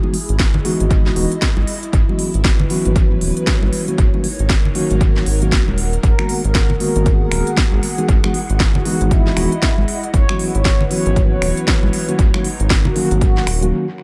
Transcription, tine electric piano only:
0.03 0.15 E3 medium
0.03 0.15 G#3 medium
0.03 0.15 B3 medium
0.03 0.15 D#4 medium
0.03 0.15 F#4 medium
0.65 1.14 E3 loud
0.65 1.14 G#3 medium
0.65 1.14 B3 medium
0.65 1.14 D#4 medium
0.65 1.14 F#4 loud
1.16 1.32 E3 medium
1.16 1.33 G#3 medium
1.16 1.33 B3 medium
1.16 1.33 D#4 medium
1.16 1.33 F#4 loud
2.08 2.30 E3 medium
2.08 2.30 F#3 medium
2.08 2.30 B3 medium
2.08 2.30 C#4 medium
2.08 2.30 F#4 medium
2.70 3.84 E3 medium
2.70 3.84 F#3 medium
2.70 3.84 B3 medium
2.70 3.85 C#4 medium
2.70 3.85 F#4 loud
3.88 4.09 D#3 medium
3.88 4.09 F#3 medium
3.88 4.09 A#3 medium
3.88 4.09 C#4 medium
3.88 4.09 F#4 medium
4.14 4.25 D#3 medium
4.14 4.25 F#3 medium
4.14 4.25 A#3 medium
4.14 4.25 C#4 medium
4.14 4.26 F#4 medium
4.75 5.24 D#3 loud
4.75 5.24 F#3 medium
4.75 5.24 A#3 medium
4.75 5.24 C#4 medium
4.75 5.24 F#4 loud
5.42 5.64 D#3 loud
5.42 5.64 F#3 medium
5.42 5.64 A#3 medium
5.42 5.64 C#4 medium
5.42 5.64 F#4 loud
6.19 6.40 D#3 medium
6.19 6.41 G#3 medium
6.19 6.41 A#3 medium
6.19 6.41 B3 medium
6.19 6.41 F#4 medium
6.80 7.94 D#3 medium
6.80 7.95 G#3 medium
6.80 7.95 A#3 medium
6.80 7.95 B3 medium
6.80 7.95 F#4 loud
7.98 8.19 E3 medium
7.98 8.19 G#3 medium
7.98 8.19 B3 medium
7.98 8.19 D#4 medium
7.98 8.20 F#4 medium
8.24 8.36 E3 medium
8.24 8.36 G#3 medium
8.24 8.36 B3 medium
8.24 8.36 D#4 medium
8.24 8.36 F#4 medium
8.85 9.34 E3 loud
8.85 9.34 G#3 medium
8.85 9.34 B3 medium
8.85 9.34 D#4 medium
8.85 9.34 F#4 loud
9.37 9.53 E3 medium
9.37 9.53 G#3 medium
9.37 9.53 B3 medium
9.37 9.53 D#4 medium
9.37 9.53 F#4 loud
10.29 10.51 E3 medium
10.29 10.51 F#3 medium
10.29 10.51 B3 medium
10.29 10.51 C#4 medium
10.29 10.51 F#4 medium
10.90 12.05 E3 medium
10.90 12.05 F#3 medium
10.90 12.05 B3 medium
10.90 12.05 C#4 medium
10.90 12.05 F#4 loud
12.08 12.30 D#3 medium
12.08 12.30 F#3 medium
12.08 12.30 A#3 medium
12.08 12.30 C#4 medium
12.08 12.30 F#4 medium
12.34 12.46 D#3 medium
12.34 12.46 F#3 medium
12.34 12.46 A#3 medium
12.34 12.46 C#4 medium
12.34 12.46 F#4 medium
12.95 13.44 D#3 loud
12.95 13.45 F#3 medium
12.95 13.45 A#3 medium
12.95 13.45 C#4 loud
12.95 13.45 F#4 loud
13.62 13.84 D#3 loud
13.62 13.84 F#3 medium
13.62 13.84 A#3 medium
13.62 13.84 C#4 medium
13.62 13.84 F#4 loud

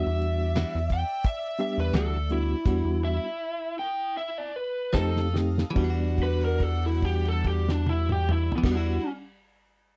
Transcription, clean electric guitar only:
0.56 0.78 E3 medium
0.56 0.78 G3 medium
0.56 0.78 D4 medium
0.56 0.78 F#4 medium
1.94 2.16 E3 medium
1.94 2.17 G3 medium
1.94 2.17 D4 medium
1.94 2.17 F#4 medium
4.93 5.19 F3 medium
4.93 5.19 C4 medium
4.93 5.20 D#4 medium
4.93 5.20 A4 medium
5.71 8.57 E3 medium
5.78 8.65 G3 medium
5.84 8.61 D4 medium
5.90 8.68 F#4 medium
8.58 8.99 E3 medium
8.65 9.03 G3 medium
8.71 9.06 D4 medium
8.77 9.09 F#4 medium

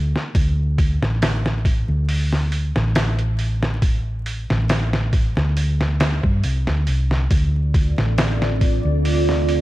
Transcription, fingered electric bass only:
0.00 0.12 D2 medium
0.35 0.97 D2 medium
1.02 1.84 A1 medium
1.89 2.71 D2 medium
2.76 4.45 A1 medium
4.50 5.32 A1 medium
5.37 6.19 D2 medium
6.24 6.41 G2 medium
6.44 6.64 C2 medium
6.68 6.85 D2 medium
6.88 7.26 C2 medium
7.31 7.93 D2 medium
7.98 8.80 A1 medium
8.85 9.61 D2 medium

